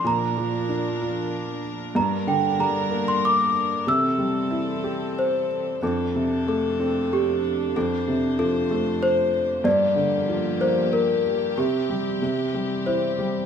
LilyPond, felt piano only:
\new Staff \with { instrumentName = "Felt piano" } { \clef bass \time 3/4 \key f \major \tempo 4 = 94 bes,8 f8 d'8 f'4. | g,8 d8 g8 bes4. | c8 g8 e'8 g'4. | f,8 c8 a8 c'4. |
f,8 c8 f8 a4. | g,8 d8 f8 bes4. | c8 g8 c8 g8 e'8 g8 | }